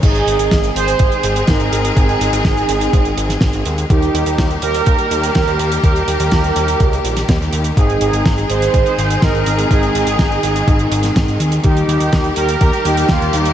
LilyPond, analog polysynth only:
\new Staff \with { instrumentName = "Analog polysynth" } { \time 4/4 \key aes \major \tempo 4 = 124 <ees' aes'>4. <aes' c''>4. <ees' bes'>4 | <ees' aes'>2.~ <ees' aes'>8 r8 | <ees' g'>4. <g' bes'>4. <g' bes'>4 | <g' bes'>2.~ <g' bes'>8 r8 |
<ees' aes'>4. <aes' c''>4. <ees' bes'>4 | <ees' aes'>2.~ <ees' aes'>8 r8 | <ees' g'>4. <g' bes'>8 <g' bes'>8 <ees' g'>8 <bes f'>8 <ees' g'>8 | }